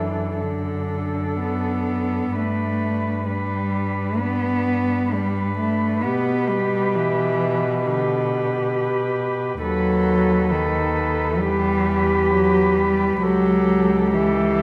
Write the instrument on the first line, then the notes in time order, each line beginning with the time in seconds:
cello
Already playing: F#2 E3 D4 A4
0.40 D3 D4 A4
1.40 B3
2.34 G2 A3 D4 B4
3.27 G3 D4 B4
4.19 B3 D4 B4
5.11 G3 D4 B4
5.58 A3
6.03 B2 B3 G4 B4
6.49 G3
6.95 E3
7.85 D3 G4 B4
9.62 D#2 F#3 A4 B4
10.50 D#3 A4 B4
11.39 E2 G3 G4 B4
12.30 F#3
12.77 G3
13.22 C#2 F#3 G4 A4
14.13 E3 G4 A4